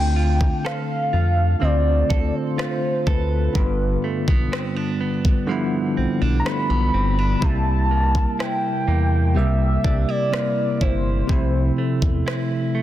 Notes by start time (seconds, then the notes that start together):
Already playing: D2 D3 A3 C4 F4 G5
0.16 F4
0.41 kick
0.65 A4 F5, cross-stick
1.13 F2 F4
1.60 D2 D3 A3 C4 D5
1.64 F4
2.10 D2 A4, kick
2.28 D5
2.35 C5
2.56 D3 A3 C4 F4, cross-stick
2.61 F4
3.07 D2 A4 B4, kick
3.53 G1 G2 D3 G3 B3, kick
3.58 F4
4.04 A3
4.28 B1 B3, kick
4.52 C4, cross-stick
4.76 D4
5.01 B3
5.25 kick
5.47 D3 F3 G3 B3
5.51 E4
5.97 B1 C4
6.22 B1 D4
6.40 D3 A#5
6.45 G3 A3 B3 F4 B5, cross-stick
6.70 B1 B3
6.94 G1 C4
7.19 D4
7.40 C2 C3 G3 A#3 A5, kick
7.45 E4
7.91 A#3
8.15 kick
8.39 E4 G5, cross-stick
8.88 E2 A#3
9.34 C2 C3 G3 A#3 E5
9.39 G4
9.84 C2 D4, kick
10.09 E4 D5
10.30 C3 G3 A#3, cross-stick
10.35 E4
10.81 G1 E4 C5, kick
11.27 C2 C3 F3 A3, kick
11.32 E4
11.78 A3
12.02 E2, kick
12.26 E4, cross-stick
12.75 A3